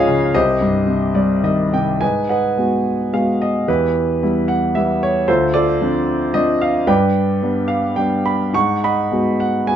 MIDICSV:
0, 0, Header, 1, 2, 480
1, 0, Start_track
1, 0, Tempo, 531444
1, 313, Time_signature, 3, 2, 24, 8
1, 796, Tempo, 564440
1, 2716, Tempo, 534759
1, 6556, Tempo, 561798
1, 8557, End_track
2, 0, Start_track
2, 0, Title_t, "Grand piano"
2, 0, Program_c, 0, 0
2, 0, Control_c, 0, 64, 127
2, 0, Note_on_c, 0, 37, 65
2, 0, Note_on_c, 0, 44, 58
2, 0, Note_on_c, 0, 49, 57
2, 0, Note_on_c, 0, 53, 57
2, 0, Note_on_c, 0, 56, 61
2, 0, Note_on_c, 0, 68, 76
2, 0, Note_on_c, 0, 73, 84
2, 0, Note_on_c, 0, 75, 103
2, 0, Note_on_c, 0, 77, 109
2, 70, Note_off_c, 0, 49, 0
2, 70, Note_on_c, 0, 49, 54
2, 274, Note_off_c, 0, 77, 0
2, 275, Note_off_c, 0, 73, 0
2, 276, Note_off_c, 0, 68, 0
2, 279, Note_off_c, 0, 37, 0
2, 294, Note_off_c, 0, 56, 0
2, 300, Note_off_c, 0, 53, 0
2, 303, Note_off_c, 0, 49, 0
2, 311, Note_on_c, 0, 36, 68
2, 312, Note_off_c, 0, 75, 0
2, 312, Note_on_c, 0, 72, 68
2, 312, Note_on_c, 0, 75, 94
2, 313, Note_on_c, 0, 67, 62
2, 326, Control_c, 0, 64, 0
2, 332, Note_off_c, 0, 44, 0
2, 488, Control_c, 0, 64, 127
2, 549, Note_on_c, 0, 43, 50
2, 781, Note_on_c, 0, 48, 47
2, 1019, Note_on_c, 0, 55, 55
2, 1024, Note_on_c, 0, 74, 68
2, 1240, Note_off_c, 0, 72, 0
2, 1240, Note_off_c, 0, 75, 0
2, 1241, Note_off_c, 0, 67, 0
2, 1253, Note_off_c, 0, 74, 0
2, 1264, Note_on_c, 0, 51, 45
2, 1271, Note_on_c, 0, 75, 71
2, 1490, Note_off_c, 0, 43, 0
2, 1502, Note_off_c, 0, 48, 0
2, 1515, Note_on_c, 0, 48, 46
2, 1522, Note_on_c, 0, 79, 72
2, 1525, Note_off_c, 0, 75, 0
2, 1730, Note_off_c, 0, 36, 0
2, 1736, Note_off_c, 0, 55, 0
2, 1745, Note_off_c, 0, 51, 0
2, 1753, Note_on_c, 0, 80, 75
2, 1755, Note_off_c, 0, 48, 0
2, 1755, Note_on_c, 0, 44, 50
2, 1763, Note_on_c, 0, 71, 49
2, 1767, Note_on_c, 0, 75, 53
2, 1773, Note_off_c, 0, 79, 0
2, 1773, Control_c, 0, 64, 0
2, 1927, Control_c, 0, 64, 127
2, 1984, Note_off_c, 0, 80, 0
2, 1992, Note_off_c, 0, 75, 0
2, 1993, Note_off_c, 0, 71, 0
2, 1997, Note_on_c, 0, 78, 71
2, 2004, Note_on_c, 0, 75, 52
2, 2006, Note_on_c, 0, 71, 53
2, 2235, Note_on_c, 0, 56, 37
2, 2238, Note_on_c, 0, 59, 36
2, 2242, Note_on_c, 0, 66, 43
2, 2681, Note_off_c, 0, 71, 0
2, 2681, Note_off_c, 0, 75, 0
2, 2696, Note_off_c, 0, 56, 0
2, 2697, Note_off_c, 0, 59, 0
2, 2699, Note_off_c, 0, 66, 0
2, 2711, Note_on_c, 0, 59, 38
2, 2713, Note_on_c, 0, 56, 39
2, 2714, Note_on_c, 0, 77, 70
2, 2718, Note_on_c, 0, 66, 43
2, 2733, Note_off_c, 0, 78, 0
2, 2940, Note_off_c, 0, 77, 0
2, 2964, Note_on_c, 0, 75, 72
2, 3159, Note_off_c, 0, 44, 0
2, 3183, Note_off_c, 0, 59, 0
2, 3184, Note_off_c, 0, 56, 0
2, 3186, Note_off_c, 0, 66, 0
2, 3204, Note_on_c, 0, 40, 60
2, 3204, Note_on_c, 0, 67, 55
2, 3204, Note_on_c, 0, 71, 72
2, 3208, Note_on_c, 0, 64, 57
2, 3210, Note_off_c, 0, 75, 0
2, 3210, Control_c, 0, 64, 0
2, 3345, Control_c, 0, 64, 127
2, 3682, Note_off_c, 0, 64, 0
2, 3692, Note_on_c, 0, 55, 43
2, 3695, Note_on_c, 0, 64, 49
2, 3696, Note_on_c, 0, 59, 38
2, 3893, Note_off_c, 0, 67, 0
2, 3921, Note_on_c, 0, 78, 73
2, 3951, Note_off_c, 0, 71, 0
2, 4145, Note_off_c, 0, 78, 0
2, 4154, Note_off_c, 0, 55, 0
2, 4155, Note_off_c, 0, 64, 0
2, 4156, Note_off_c, 0, 59, 0
2, 4163, Note_on_c, 0, 76, 79
2, 4178, Note_on_c, 0, 55, 45
2, 4180, Note_on_c, 0, 59, 39
2, 4183, Note_on_c, 0, 64, 47
2, 4406, Note_off_c, 0, 76, 0
2, 4413, Note_on_c, 0, 73, 83
2, 4602, Note_off_c, 0, 40, 0
2, 4628, Note_off_c, 0, 55, 0
2, 4630, Note_off_c, 0, 59, 0
2, 4631, Note_off_c, 0, 64, 0
2, 4637, Note_on_c, 0, 72, 81
2, 4638, Note_on_c, 0, 38, 68
2, 4638, Note_on_c, 0, 69, 63
2, 4639, Note_on_c, 0, 65, 60
2, 4649, Note_off_c, 0, 73, 0
2, 4649, Control_c, 0, 64, 0
2, 4798, Control_c, 0, 64, 127
2, 4856, Note_off_c, 0, 72, 0
2, 4859, Note_off_c, 0, 65, 0
2, 4862, Note_off_c, 0, 69, 0
2, 4869, Note_on_c, 0, 74, 98
2, 4873, Note_on_c, 0, 65, 67
2, 4875, Note_on_c, 0, 69, 62
2, 5118, Note_on_c, 0, 53, 47
2, 5122, Note_on_c, 0, 60, 42
2, 5128, Note_on_c, 0, 62, 55
2, 5555, Note_off_c, 0, 65, 0
2, 5556, Note_off_c, 0, 69, 0
2, 5580, Note_off_c, 0, 53, 0
2, 5583, Note_off_c, 0, 60, 0
2, 5584, Note_off_c, 0, 62, 0
2, 5588, Note_on_c, 0, 75, 88
2, 5595, Note_on_c, 0, 53, 43
2, 5597, Note_on_c, 0, 60, 40
2, 5597, Note_on_c, 0, 62, 50
2, 5610, Note_off_c, 0, 74, 0
2, 5836, Note_on_c, 0, 77, 81
2, 5838, Note_off_c, 0, 75, 0
2, 6037, Note_off_c, 0, 38, 0
2, 6060, Note_off_c, 0, 53, 0
2, 6061, Note_off_c, 0, 60, 0
2, 6061, Note_off_c, 0, 62, 0
2, 6066, Note_on_c, 0, 43, 66
2, 6066, Note_on_c, 0, 71, 64
2, 6068, Note_on_c, 0, 74, 64
2, 6068, Note_on_c, 0, 79, 82
2, 6081, Note_off_c, 0, 77, 0
2, 6084, Control_c, 0, 64, 0
2, 6243, Control_c, 0, 64, 127
2, 6562, Note_on_c, 0, 55, 42
2, 6567, Note_on_c, 0, 62, 48
2, 6570, Note_on_c, 0, 59, 39
2, 6753, Note_off_c, 0, 71, 0
2, 6754, Note_off_c, 0, 74, 0
2, 6779, Note_on_c, 0, 77, 76
2, 6810, Note_off_c, 0, 79, 0
2, 7018, Note_off_c, 0, 55, 0
2, 7021, Note_off_c, 0, 62, 0
2, 7021, Note_on_c, 0, 79, 75
2, 7022, Note_off_c, 0, 59, 0
2, 7030, Note_off_c, 0, 77, 0
2, 7035, Note_on_c, 0, 55, 38
2, 7035, Note_on_c, 0, 59, 37
2, 7044, Note_on_c, 0, 62, 41
2, 7272, Note_on_c, 0, 83, 76
2, 7275, Note_off_c, 0, 79, 0
2, 7480, Note_off_c, 0, 43, 0
2, 7506, Note_off_c, 0, 55, 0
2, 7506, Note_off_c, 0, 59, 0
2, 7510, Note_off_c, 0, 62, 0
2, 7510, Note_on_c, 0, 44, 59
2, 7519, Note_on_c, 0, 78, 64
2, 7519, Note_on_c, 0, 85, 92
2, 7525, Note_off_c, 0, 83, 0
2, 7526, Control_c, 0, 64, 0
2, 7682, Control_c, 0, 64, 127
2, 7763, Note_off_c, 0, 78, 0
2, 7771, Note_off_c, 0, 85, 0
2, 7772, Note_on_c, 0, 83, 82
2, 7773, Note_on_c, 0, 75, 63
2, 7776, Note_on_c, 0, 78, 61
2, 8009, Note_on_c, 0, 56, 40
2, 8009, Note_on_c, 0, 59, 38
2, 8016, Note_on_c, 0, 66, 46
2, 8238, Note_off_c, 0, 78, 0
2, 8250, Note_on_c, 0, 78, 74
2, 8261, Note_off_c, 0, 83, 0
2, 8448, Note_off_c, 0, 75, 0
2, 8465, Note_off_c, 0, 59, 0
2, 8466, Note_off_c, 0, 56, 0
2, 8469, Note_off_c, 0, 66, 0
2, 8483, Note_on_c, 0, 56, 42
2, 8484, Note_on_c, 0, 80, 84
2, 8486, Note_on_c, 0, 59, 38
2, 8488, Note_off_c, 0, 78, 0
2, 8488, Note_on_c, 0, 66, 44
2, 8557, Note_off_c, 0, 44, 0
2, 8557, Note_off_c, 0, 56, 0
2, 8557, Note_off_c, 0, 59, 0
2, 8557, Note_off_c, 0, 66, 0
2, 8557, Note_off_c, 0, 80, 0
2, 8557, End_track
0, 0, End_of_file